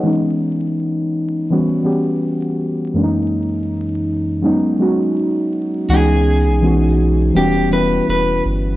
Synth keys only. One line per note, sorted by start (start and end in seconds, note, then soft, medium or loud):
0.00 1.02 E3 medium
0.00 1.03 G#3 medium
0.00 0.23 D#5 medium
0.05 1.03 B3 medium
0.05 1.03 C#4 medium
0.05 1.04 D#4 medium
1.50 1.81 E3 medium
1.50 1.81 G3 medium
1.50 1.81 B3 medium
1.50 1.82 C#4 medium
1.50 1.82 F#4 medium
1.83 2.57 E3 medium
1.83 2.58 G3 medium
1.83 2.58 B3 medium
1.83 2.58 C#4 medium
1.83 2.59 G4 medium
2.94 3.94 F#2 medium
2.94 3.94 E3 medium
2.94 3.95 G#3 medium
2.94 3.95 A#3 medium
2.94 3.95 C#4 medium
2.94 3.04 D4 medium
3.03 3.99 D#4 medium
4.42 4.73 F#3 medium
4.42 4.73 G#3 medium
4.42 4.74 B3 medium
4.42 4.74 C#4 medium
4.42 4.74 D#4 medium
4.79 5.51 F#3 medium
4.79 5.52 G#3 medium
4.79 5.52 B3 medium
4.79 5.53 C#4 medium
4.79 5.53 F#4 medium
5.90 6.40 E3 medium
5.90 6.40 G#3 medium
5.90 6.41 B3 medium
5.90 6.41 C#4 medium
5.90 6.42 D#4 medium
6.62 7.33 E3 medium
6.62 7.35 G#3 medium
6.62 7.34 B3 medium
6.62 7.35 C#4 medium
6.62 7.36 F#4 medium
7.34 7.65 E3 medium
7.34 7.65 G3 medium
7.34 7.66 B3 medium
7.34 7.66 C#4 medium
7.34 7.67 F#4 medium
7.70 8.44 E3 medium
7.70 8.44 G3 medium
7.70 8.44 B3 medium
7.70 8.45 C#4 medium
7.70 8.45 E4 medium